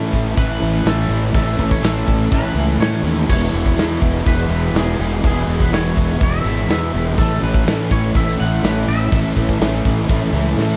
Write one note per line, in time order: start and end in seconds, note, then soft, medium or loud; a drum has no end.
0.00 0.35 A2 loud
0.00 0.36 E3 medium
0.00 0.37 E3 medium
0.00 0.14 A3 medium
0.00 0.38 A3 loud
0.00 0.13 C#4 medium
0.00 0.11 E4 medium
0.00 0.38 C#5 medium
0.12 0.34 A1 medium
0.12 0.36 A3 medium
0.12 0.37 C#4 medium
0.12 0.38 E4 medium
0.12 kick medium
0.12 open hi-hat medium
0.35 0.58 A1 medium
0.35 0.85 A2 medium
0.35 0.83 E3 loud
0.35 0.61 A3 medium
0.35 0.61 C#4 loud
0.35 0.59 E4 loud
0.35 0.88 B4 medium
0.35 kick loud
0.35 open hi-hat medium
0.60 0.83 A1 medium
0.60 0.83 A3 medium
0.60 0.84 C#4 medium
0.60 0.85 E4 medium
0.60 open hi-hat medium
0.83 1.06 A1 medium
0.83 1.32 E3 medium
0.83 1.10 A3 medium
0.83 1.09 C#4 medium
0.83 1.07 E4 medium
0.83 1.33 A4 medium
0.83 snare loud
0.83 open hi-hat medium
1.08 1.31 A1 medium
1.08 1.32 A3 medium
1.08 1.33 C#4 medium
1.08 1.35 E4 medium
1.08 open hi-hat medium
1.32 1.55 A1 medium
1.32 1.82 A2 medium
1.32 1.80 E3 loud
1.32 1.58 A3 medium
1.32 1.57 C#4 loud
1.32 1.56 E4 loud
1.32 1.72 A4 medium
1.32 kick loud
1.32 open hi-hat medium
1.56 1.80 A1 medium
1.56 1.81 A3 medium
1.56 1.83 C#4 medium
1.56 1.84 E4 medium
1.56 kick medium
1.56 open hi-hat medium
1.71 1.84 C#5 medium
1.71 kick medium
1.81 2.04 A1 medium
1.81 2.31 E3 medium
1.81 2.07 A3 medium
1.81 2.06 C#4 medium
1.81 2.05 E4 medium
1.81 2.33 A4 medium
1.81 snare loud
1.81 open hi-hat medium
2.05 2.29 A1 medium
2.05 2.30 A3 medium
2.05 2.32 C#4 medium
2.05 2.33 E4 medium
2.05 kick medium
2.05 open hi-hat medium
2.30 2.53 A1 medium
2.30 2.79 A2 medium
2.30 2.78 E3 medium
2.30 2.56 A3 medium
2.30 2.56 C#4 loud
2.30 2.54 E4 loud
2.30 2.80 B4 medium
2.30 kick loud
2.30 open hi-hat medium
2.54 2.76 C#2 medium
2.54 2.79 A3 medium
2.54 2.81 C#4 medium
2.54 2.81 E4 medium
2.54 open hi-hat medium
2.78 3.00 A2 medium
2.78 3.27 E3 medium
2.78 3.05 A3 medium
2.78 3.05 C#4 medium
2.78 3.03 E4 medium
2.78 3.14 C#5 medium
2.78 snare loud
2.78 open hi-hat medium
3.03 3.25 D#2 medium
3.03 3.28 A3 medium
3.03 3.29 C#4 medium
3.03 3.29 E4 medium
3.03 open hi-hat medium
3.27 3.50 E1 medium
3.27 5.21 E2 medium
3.27 4.25 E2 medium
3.27 3.77 B2 medium
3.27 4.25 B2 medium
3.27 3.74 E3 loud
3.27 3.54 G#3 loud
3.27 3.53 B3 loud
3.27 3.51 E4 loud
3.27 4.27 C#5 medium
3.27 kick loud
3.27 crash loud
3.52 3.74 E1 medium
3.52 3.75 E3 medium
3.52 3.75 G#3 medium
3.52 3.77 B3 medium
3.52 3.78 E4 medium
3.52 open hi-hat medium
3.66 kick medium
3.75 3.97 E2 medium
3.75 4.24 E3 medium
3.75 4.04 G#3 medium
3.75 4.02 B3 medium
3.75 4.00 E4 medium
3.75 open hi-hat medium
3.79 snare loud
4.01 4.23 E1 medium
4.01 4.24 G#3 medium
4.01 4.26 B3 medium
4.01 4.27 E4 medium
4.01 kick medium
4.01 open hi-hat medium
4.24 4.47 E1 medium
4.24 5.21 E2 medium
4.24 5.22 B2 medium
4.24 4.73 E3 loud
4.24 4.50 G#3 medium
4.24 4.50 B3 loud
4.24 4.48 E4 loud
4.24 4.77 B4 medium
4.24 kick loud
4.24 open hi-hat medium
4.49 4.71 E1 medium
4.49 4.72 E3 medium
4.49 4.73 G#3 medium
4.49 4.75 B3 medium
4.49 4.76 E4 medium
4.49 open hi-hat medium
4.73 4.95 E1 medium
4.73 5.21 E3 medium
4.73 5.00 G#3 medium
4.73 5.00 B3 medium
4.73 4.98 E4 medium
4.73 snare loud
4.73 open hi-hat medium
4.78 5.25 G#4 medium
4.99 5.20 E1 medium
4.99 5.23 E3 medium
4.99 5.21 G#3 medium
4.99 5.23 B3 medium
4.99 5.24 E4 medium
4.99 open hi-hat medium
5.21 5.45 E1 loud
5.21 5.71 E2 medium
5.21 6.18 E2 medium
5.21 5.71 B2 medium
5.21 6.19 B2 medium
5.21 5.70 E3 medium
5.21 5.49 G#3 loud
5.21 5.48 B3 loud
5.21 5.47 E4 loud
5.21 kick loud
5.21 open hi-hat medium
5.27 5.62 G#4 medium
5.47 5.68 E1 medium
5.47 5.70 E3 medium
5.47 5.70 G#3 medium
5.47 5.73 B3 medium
5.47 5.73 E4 medium
5.47 open hi-hat medium
5.60 5.73 B4 medium
5.60 kick medium
5.70 5.93 E1 medium
5.70 6.18 E3 medium
5.70 5.96 G#3 medium
5.70 5.96 B3 medium
5.70 5.95 E4 medium
5.70 6.23 C#5 loud
5.70 snare loud
5.70 open hi-hat medium
5.95 6.18 E1 medium
5.95 6.19 G#3 medium
5.95 6.21 B3 medium
5.95 6.21 E4 medium
5.95 kick medium
5.95 open hi-hat medium
6.19 6.42 E1 medium
6.19 7.15 E2 medium
6.19 7.16 B2 medium
6.19 6.69 E3 medium
6.19 6.47 G#3 medium
6.19 6.46 B3 medium
6.19 6.45 E4 loud
6.19 kick loud
6.19 open hi-hat medium
6.23 6.70 E5 loud
6.44 6.65 G#1 medium
6.44 6.67 E3 medium
6.44 6.69 G#3 medium
6.44 6.70 B3 medium
6.44 6.71 E4 medium
6.44 open hi-hat medium
6.69 6.90 E2 medium
6.69 7.17 E3 medium
6.69 6.94 G#3 medium
6.69 6.94 B3 medium
6.69 6.92 E4 medium
6.69 7.04 E5 loud
6.69 snare loud
6.69 open hi-hat medium
6.93 7.14 E1 medium
6.93 7.16 E3 medium
6.93 7.17 G#3 medium
6.93 7.18 B3 medium
6.93 7.19 E4 medium
6.93 open hi-hat medium
7.16 7.39 A1 medium
7.16 8.14 A2 medium
7.16 7.66 E3 medium
7.16 7.44 A3 loud
7.16 7.43 C#4 loud
7.16 7.41 E4 loud
7.16 7.43 A4 loud
7.16 kick loud
7.16 open hi-hat medium
7.41 7.63 A1 medium
7.41 7.67 A3 medium
7.41 7.67 C#4 medium
7.41 7.68 E4 medium
7.41 7.93 B4 loud
7.41 open hi-hat soft
7.54 kick medium
7.66 7.88 A2 medium
7.66 8.14 E3 medium
7.66 7.93 A3 medium
7.66 7.92 C#4 medium
7.66 7.90 E4 medium
7.66 snare loud
7.66 open hi-hat medium
7.90 8.12 A1 medium
7.90 8.15 A3 medium
7.90 8.16 C#4 medium
7.90 8.17 E4 medium
7.90 8.16 C#5 medium
7.90 kick medium
7.90 open hi-hat medium
8.14 8.36 A1 medium
8.14 8.63 A2 medium
8.14 8.63 E3 medium
8.14 8.40 A3 loud
8.14 8.40 C#4 loud
8.14 8.38 E4 loud
8.14 8.40 E5 loud
8.14 kick loud
8.14 open hi-hat medium
8.38 8.61 A1 medium
8.38 8.63 A3 medium
8.38 8.65 C#4 medium
8.38 8.65 E4 medium
8.38 8.64 F#5 loud
8.38 open hi-hat medium
8.63 8.84 A1 medium
8.63 9.12 E3 medium
8.63 8.89 A3 medium
8.63 8.88 C#4 medium
8.63 8.86 E4 medium
8.63 8.88 B4 medium
8.63 snare loud
8.63 open hi-hat medium
8.87 9.09 A1 medium
8.87 9.12 A3 medium
8.87 9.13 C#4 medium
8.87 9.13 E4 medium
8.87 9.97 E5 medium
8.87 open hi-hat medium
9.11 9.33 A1 medium
9.11 9.60 A2 medium
9.11 9.59 E3 loud
9.11 9.37 A3 medium
9.11 9.35 C#4 loud
9.11 9.33 E4 loud
9.11 kick loud
9.11 open hi-hat medium
9.35 9.57 A1 medium
9.35 9.60 A3 medium
9.35 9.61 C#4 medium
9.35 9.62 E4 medium
9.35 kick medium
9.35 open hi-hat medium
9.49 kick medium
9.60 9.81 A1 medium
9.60 10.07 E3 medium
9.60 9.86 A3 medium
9.60 9.84 C#4 medium
9.60 9.83 E4 medium
9.60 snare loud
9.60 open hi-hat medium
9.84 10.06 A1 medium
9.84 10.08 A3 medium
9.84 10.08 C#4 medium
9.84 10.10 E4 medium
9.84 kick medium
9.84 open hi-hat medium
9.97 10.54 D5 medium
10.08 10.30 A1 medium
10.08 10.57 A2 medium
10.08 10.55 E3 loud
10.08 10.34 A3 medium
10.08 10.33 C#4 loud
10.08 10.31 E4 loud
10.08 kick loud
10.08 open hi-hat medium
10.32 10.54 C#2 medium
10.32 10.57 A3 medium
10.32 10.57 C#4 medium
10.32 10.58 E4 medium
10.32 open hi-hat medium
10.56 10.77 A2 medium
10.56 10.77 E3 medium
10.56 10.77 A3 medium
10.56 10.77 C#4 medium
10.56 10.77 E4 medium
10.56 snare medium